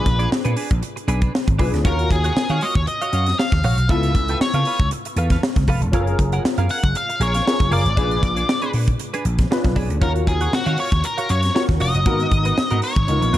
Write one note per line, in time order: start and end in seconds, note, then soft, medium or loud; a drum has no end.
0.00 1.55 D4 medium
0.00 1.56 F4 medium
0.00 1.56 G#4 medium
0.00 0.28 B4 medium
0.00 1.56 B4 medium
0.06 0.25 A#1 medium
0.06 muted clean electric guitar stroke soft
0.06 kick medium
0.06 closed hi-hat medium
0.19 0.29 D4 medium
0.19 0.30 G#4 medium
0.19 0.31 D5 medium
0.19 closed hi-hat soft
0.31 muted clean electric guitar stroke soft
0.31 muted slap bass stroke soft
0.31 snare loud
0.45 0.54 A#2 medium
0.45 0.55 D4 medium
0.45 0.56 G#4 medium
0.45 0.56 B4 medium
0.45 closed hi-hat soft
0.56 0.72 D4 medium
0.56 0.70 G#4 medium
0.56 0.69 B4 medium
0.56 open hi-hat medium
0.70 0.80 A#1 medium
0.70 muted clean electric guitar stroke soft
0.70 kick medium
0.70 closed hi-hat soft
0.82 muted clean electric guitar stroke soft
0.82 closed hi-hat medium
0.96 muted clean electric guitar stroke medium
0.96 closed hi-hat medium
1.08 1.27 B1 medium
1.08 1.21 D4 medium
1.08 1.21 G#4 medium
1.08 1.20 B4 medium
1.08 closed hi-hat medium
1.21 1.33 D4 soft
1.21 1.33 G#4 medium
1.21 1.33 B4 medium
1.21 kick medium
1.21 closed hi-hat soft
1.34 muted clean electric guitar stroke soft
1.34 snare loud
1.47 1.56 G#1 medium
1.47 muted clean electric guitar stroke soft
1.47 kick medium
1.47 closed hi-hat soft
1.59 1.70 B1 medium
1.59 1.78 D4 medium
1.59 1.85 D4 medium
1.59 1.83 F4 soft
1.59 1.73 G#4 medium
1.59 1.85 G#4 soft
1.59 1.72 B4 medium
1.59 1.85 B4 medium
1.59 kick medium
1.59 open hi-hat medium
1.73 1.82 D2 medium
1.73 muted clean electric guitar stroke soft
1.73 snare soft
1.73 closed hi-hat medium
1.84 2.04 D#2 medium
1.84 3.85 C#4 medium
1.84 3.85 F4 medium
1.84 2.08 F#4 medium
1.84 3.85 F#4 medium
1.84 2.09 A#4 medium
1.84 3.86 A#4 medium
1.84 2.09 C#5 medium
1.84 2.09 F5 medium
1.84 kick loud
1.84 closed hi-hat medium
1.99 closed hi-hat soft
2.11 2.30 D#2 medium
2.11 2.64 G#4 medium
2.11 kick medium
2.11 closed hi-hat medium
2.24 2.35 F#4 soft
2.24 2.35 C#5 medium
2.24 2.37 F#5 medium
2.24 closed hi-hat soft
2.36 muted clean electric guitar stroke soft
2.36 muted slap bass stroke soft
2.36 snare loud
2.49 2.58 D#3 loud
2.49 2.60 F#4 medium
2.49 2.61 C#5 medium
2.49 2.62 F5 medium
2.49 closed hi-hat soft
2.61 2.77 F#4 medium
2.61 2.75 C#5 medium
2.61 2.76 D#5 medium
2.61 2.75 F5 medium
2.61 open hi-hat medium
2.75 2.84 D#2 medium
2.75 2.87 C#5 medium
2.75 muted clean electric guitar stroke soft
2.75 kick medium
2.87 3.40 D#5 medium
2.87 muted clean electric guitar stroke soft
2.87 closed hi-hat medium
3.02 3.11 F#4 medium
3.02 3.12 C#5 medium
3.02 3.13 F5 medium
3.02 closed hi-hat medium
3.13 3.32 F#2 medium
3.13 3.32 F#4 medium
3.13 3.26 C#5 medium
3.13 3.25 F5 medium
3.13 closed hi-hat medium
3.26 muted clean electric guitar stroke soft
3.26 snare soft
3.26 closed hi-hat soft
3.38 3.91 F5 medium
3.38 muted clean electric guitar stroke soft
3.38 snare loud
3.52 3.61 D#2 medium
3.52 muted clean electric guitar stroke soft
3.52 kick medium
3.52 snare soft
3.52 closed hi-hat soft
3.64 3.74 A#1 medium
3.64 3.83 F#4 medium
3.64 3.78 C#5 medium
3.64 3.77 F5 medium
3.64 open hi-hat medium
3.77 3.86 B1 medium
3.77 muted clean electric guitar stroke medium
3.77 closed hi-hat soft
3.88 4.08 C#2 medium
3.88 5.89 B3 medium
3.88 5.89 E4 medium
3.88 5.90 F4 medium
3.88 4.13 A4 medium
3.88 5.90 A4 medium
3.88 4.13 B4 medium
3.88 4.37 E5 medium
3.88 4.14 F5 loud
3.88 kick medium
3.88 closed hi-hat medium
4.03 closed hi-hat soft
4.15 4.34 C#2 medium
4.15 muted clean electric guitar stroke soft
4.15 kick medium
4.15 closed hi-hat medium
4.28 4.40 A4 medium
4.28 4.40 B4 medium
4.28 4.42 G5 medium
4.28 closed hi-hat soft
4.40 4.88 C#5 medium
4.40 muted slap bass stroke soft
4.40 muted clean electric guitar stroke soft
4.40 snare loud
4.54 4.63 C#3 medium
4.54 4.65 A4 medium
4.54 4.66 B4 medium
4.54 4.66 F5 medium
4.54 closed hi-hat soft
4.65 4.81 A4 medium
4.65 4.80 B4 medium
4.65 4.79 F5 medium
4.65 open hi-hat medium
4.79 4.88 C#2 medium
4.79 muted clean electric guitar stroke soft
4.79 kick medium
4.79 closed hi-hat medium
4.91 muted clean electric guitar stroke soft
4.91 closed hi-hat medium
5.05 muted clean electric guitar stroke soft
5.05 closed hi-hat medium
5.16 5.36 E2 medium
5.16 5.31 A4 medium
5.16 5.31 B4 medium
5.16 5.30 F5 medium
5.16 closed hi-hat medium
5.30 5.42 A4 soft
5.30 5.42 B4 medium
5.30 5.43 F5 medium
5.30 kick medium
5.30 snare soft
5.30 closed hi-hat soft
5.43 muted clean electric guitar stroke soft
5.43 snare loud
5.56 5.65 C#2 medium
5.56 muted clean electric guitar stroke soft
5.56 kick medium
5.56 snare soft
5.56 closed hi-hat medium
5.68 5.78 F1 medium
5.68 5.87 A4 medium
5.68 5.82 B4 medium
5.68 5.81 F5 loud
5.68 kick medium
5.68 open hi-hat medium
5.81 5.93 E1 medium
5.81 muted clean electric guitar stroke medium
5.81 closed hi-hat soft
5.92 6.12 F#1 medium
5.92 7.43 C#4 medium
5.92 7.43 F4 medium
5.92 7.43 G#4 medium
5.92 6.17 G#4 medium
5.92 6.00 A4 medium
5.92 6.17 A#4 medium
5.92 6.18 F5 medium
5.92 kick loud
5.92 closed hi-hat medium
6.00 7.45 A#4 medium
6.07 closed hi-hat soft
6.19 6.38 F#1 medium
6.19 kick medium
6.19 closed hi-hat medium
6.32 6.43 G#4 medium
6.32 6.43 A#4 medium
6.32 6.45 F#5 medium
6.32 closed hi-hat soft
6.44 muted slap bass stroke soft
6.44 muted clean electric guitar stroke soft
6.44 snare loud
6.58 6.67 F#2 medium
6.58 6.69 G#4 medium
6.58 6.69 A#4 medium
6.58 6.70 F5 medium
6.58 closed hi-hat soft
6.69 6.85 G#4 medium
6.69 6.83 A#4 medium
6.69 6.82 F5 medium
6.69 6.97 F#5 medium
6.69 open hi-hat medium
6.84 6.92 F#1 medium
6.84 muted clean electric guitar stroke soft
6.84 kick medium
6.84 closed hi-hat medium
6.95 7.20 F5 medium
6.95 muted clean electric guitar stroke soft
6.95 closed hi-hat medium
7.09 muted clean electric guitar stroke soft
7.09 closed hi-hat soft
7.20 7.39 A#1 medium
7.20 7.34 G#4 medium
7.20 7.34 A#4 medium
7.20 7.69 C#5 medium
7.20 7.34 F5 medium
7.20 closed hi-hat medium
7.34 7.45 G#4 soft
7.34 7.46 A#4 medium
7.34 7.46 F5 medium
7.34 snare soft
7.34 closed hi-hat medium
7.46 7.97 C#4 soft
7.46 7.95 F4 soft
7.46 7.96 G#4 soft
7.46 7.98 A#4 medium
7.46 muted clean electric guitar stroke soft
7.46 snare loud
7.60 7.69 F#1 medium
7.60 muted clean electric guitar stroke soft
7.60 kick medium
7.60 closed hi-hat soft
7.71 7.82 F#1 medium
7.71 7.91 G#4 medium
7.71 7.85 A#4 medium
7.71 8.71 D5 medium
7.71 7.84 F5 medium
7.71 open hi-hat medium
7.85 7.94 G#1 medium
7.85 muted clean electric guitar stroke soft
7.85 closed hi-hat soft
7.96 8.16 A#1 medium
7.96 9.47 D4 medium
7.96 8.21 D4 medium
7.96 9.47 F4 medium
7.96 8.21 G#4 medium
7.96 9.48 G#4 medium
7.96 8.22 B4 medium
7.96 9.48 B4 medium
7.96 kick medium
7.96 closed hi-hat medium
8.11 closed hi-hat soft
8.23 8.42 A#1 medium
8.23 muted clean electric guitar stroke soft
8.23 kick medium
8.23 closed hi-hat medium
8.36 8.47 D4 medium
8.36 8.47 G#4 medium
8.36 8.49 D5 medium
8.36 closed hi-hat medium
8.49 snare loud
8.62 8.73 D4 medium
8.62 8.73 G#4 medium
8.62 8.74 B4 medium
8.62 closed hi-hat soft
8.73 8.93 A#2 medium
8.73 8.89 D4 medium
8.73 8.87 G#4 medium
8.73 8.87 B4 medium
8.73 open hi-hat medium
8.88 muted clean electric guitar stroke soft
8.88 kick medium
8.99 muted clean electric guitar stroke soft
8.99 closed hi-hat medium
9.14 9.24 D4 medium
9.14 9.25 G#4 medium
9.14 9.25 B4 medium
9.14 closed hi-hat soft
9.25 9.44 A#1 medium
9.25 muted clean electric guitar stroke soft
9.25 closed hi-hat medium
9.38 muted clean electric guitar stroke soft
9.38 kick medium
9.38 snare soft
9.38 closed hi-hat medium
9.50 9.57 C#4 soft
9.50 9.99 F4 medium
9.50 10.02 G#4 soft
9.50 10.02 B4 medium
9.50 muted clean electric guitar stroke soft
9.50 snare loud
9.56 10.04 D4 medium
9.64 9.73 B1 medium
9.64 muted clean electric guitar stroke soft
9.64 kick medium
9.64 snare soft
9.64 closed hi-hat soft
9.76 9.86 B1 medium
9.76 9.95 D4 medium
9.76 9.89 G#4 medium
9.76 9.89 B4 loud
9.76 kick medium
9.76 open hi-hat medium
9.90 9.99 D2 medium
9.90 muted clean electric guitar stroke soft
9.90 closed hi-hat soft
10.00 10.21 D#2 medium
10.00 11.51 C#4 medium
10.00 11.51 F4 medium
10.00 10.25 F#4 medium
10.00 11.52 F#4 medium
10.00 11.52 A#4 medium
10.00 10.10 A#4 medium
10.00 10.25 C#5 medium
10.00 10.26 F5 loud
10.00 kick loud
10.00 closed hi-hat medium
10.16 closed hi-hat soft
10.27 10.46 D#2 medium
10.27 10.54 G#4 medium
10.27 kick medium
10.27 closed hi-hat medium
10.41 10.52 F#4 medium
10.41 10.52 C#5 medium
10.41 10.53 F#5 medium
10.41 closed hi-hat medium
10.53 10.77 F#4 medium
10.53 muted slap bass stroke soft
10.53 snare loud
10.66 10.75 D#3 medium
10.66 10.77 F#4 medium
10.66 10.77 C#5 medium
10.66 10.78 F5 medium
10.66 closed hi-hat soft
10.78 10.93 F#4 medium
10.78 10.91 C#5 medium
10.78 11.05 C#5 medium
10.78 10.91 F5 medium
10.78 open hi-hat medium
10.92 11.01 D#2 medium
10.92 muted clean electric guitar stroke soft
10.92 kick medium
10.92 closed hi-hat soft
11.04 11.31 A#4 medium
11.04 muted clean electric guitar stroke soft
11.04 closed hi-hat loud
11.18 11.28 F#4 medium
11.18 11.29 C#5 medium
11.18 11.29 F5 medium
11.18 closed hi-hat medium
11.29 11.49 F#2 medium
11.29 11.45 F#4 medium
11.29 11.43 C#5 medium
11.29 11.54 C#5 medium
11.29 11.42 F5 medium
11.29 closed hi-hat medium
11.43 muted clean electric guitar stroke soft
11.43 snare soft
11.43 closed hi-hat medium
11.54 12.06 C#4 soft
11.54 12.06 F4 soft
11.54 12.05 F#4 soft
11.54 12.06 A#4 soft
11.54 11.62 C#5 medium
11.54 muted clean electric guitar stroke soft
11.54 snare medium
11.69 11.77 D#2 medium
11.69 muted clean electric guitar stroke soft
11.69 kick medium
11.69 snare soft
11.69 closed hi-hat soft
11.80 11.91 F1 medium
11.80 11.99 F#4 medium
11.80 11.94 C#5 medium
11.80 12.79 D#5 medium
11.80 11.93 F5 medium
11.80 open hi-hat medium
11.94 12.06 F#1 medium
11.94 muted clean electric guitar stroke soft
11.94 closed hi-hat medium
12.05 12.25 G#1 loud
12.05 12.12 A#3 medium
12.05 12.30 B3 medium
12.05 13.06 D#4 medium
12.05 13.06 F#4 medium
12.05 12.30 F#4 medium
12.05 12.30 A#4 medium
12.05 13.07 A#4 medium
12.05 kick loud
12.05 closed hi-hat medium
12.11 13.05 B3 medium
12.20 closed hi-hat soft
12.31 12.51 G#1 medium
12.31 muted clean electric guitar stroke soft
12.31 kick medium
12.31 closed hi-hat medium
12.45 12.56 B3 medium
12.45 12.57 F#4 medium
12.45 12.58 B4 medium
12.45 closed hi-hat medium
12.57 muted clean electric guitar stroke soft
12.57 muted slap bass stroke soft
12.57 snare loud
12.70 12.80 G#2 medium
12.70 12.81 B3 medium
12.70 12.82 F#4 medium
12.70 12.83 A#4 medium
12.70 closed hi-hat soft
12.82 12.98 B3 soft
12.82 12.96 F#4 medium
12.82 12.95 A#4 medium
12.82 13.38 C#5 medium
12.82 open hi-hat medium
12.96 13.05 G#1 medium
12.96 kick loud
12.96 closed hi-hat soft
13.07 13.19 C#2 loud
13.07 13.38 B3 medium
13.07 13.38 D#4 medium
13.07 13.38 F4 medium
13.07 13.38 A#4 medium
13.07 muted clean electric guitar stroke soft
13.07 closed hi-hat medium
13.21 13.31 A#1 medium
13.21 muted clean electric guitar stroke soft
13.21 closed hi-hat medium
13.33 13.38 B1 medium
13.33 13.38 B3 medium
13.33 13.38 F4 medium
13.33 13.38 A#4 medium
13.33 closed hi-hat medium